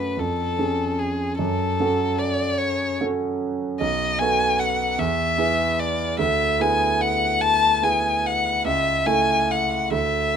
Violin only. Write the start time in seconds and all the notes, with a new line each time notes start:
Already playing: B4
0.20 A4
0.99 G#4
1.39 A4
2.19 D5
2.58 C#5
3.80 D#5
4.19 G#5
4.59 F#5
4.99 E5
5.79 D5
6.19 E5
6.61 G#5
7.01 F#5
7.41 A5
7.83 G#5
8.26 F#5
8.67 E5
9.06 G#5
9.51 F#5
9.93 E5